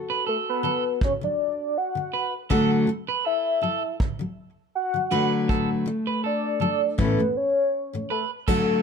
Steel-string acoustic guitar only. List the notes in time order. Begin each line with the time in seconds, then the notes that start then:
Already playing: D3 F#3 F#4 A4
0.63 D3 F#3
1.21 D3 F#3
1.95 D3 F#3
2.50 D3 F#3 A3 F#4 A4
2.87 D3 F#3
3.61 D3 F#3
4.19 D3 F#3
4.94 D3 F#3
5.11 D3 F#3 A3 F#4 B4
5.86 D3 F#3
6.60 D3 F#3
6.98 A2 E3 A3 C#4 E4 A4
7.18 A2 E3 A3
7.93 A2 E3 A3
8.47 D3 F#3 A3 F#4 A4